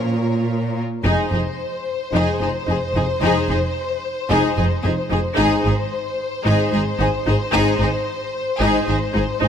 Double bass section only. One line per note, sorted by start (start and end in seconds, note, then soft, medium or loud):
1.05 1.13 F1 medium
1.32 1.40 F1 soft
2.13 2.21 F1 medium
2.40 2.48 F1 soft
2.68 2.76 F1 soft
2.94 3.02 F1 soft
3.21 3.29 F1 medium
3.49 3.57 F1 soft
4.30 4.38 F1 medium
4.57 4.65 F1 medium
4.85 4.93 F1 soft
5.12 5.20 F1 soft
5.38 5.46 G#1 medium
5.65 5.73 G#1 soft
6.47 6.55 G#1 medium
6.73 6.81 G#1 medium
6.99 7.07 G#1 soft
7.27 7.35 G#1 soft
7.53 7.61 G#1 medium
7.80 7.88 G#1 medium
8.60 8.68 G#1 medium
8.89 8.97 G#1 medium
9.15 9.23 G#1 soft
9.42 9.48 G#1 soft